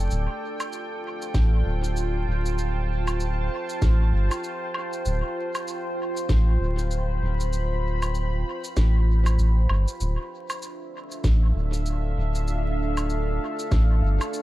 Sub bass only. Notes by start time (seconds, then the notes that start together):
0.11 D1
1.34 A1
1.65 D1
2.27 D1
3.82 A1
4.13 G1
5.05 D1
6.29 A1
6.60 D1
7.22 D1
8.77 A1
9.38 A1
9.69 G1
10.00 D1
11.24 A1
11.55 D1
12.17 D1
13.71 A1
14.02 G1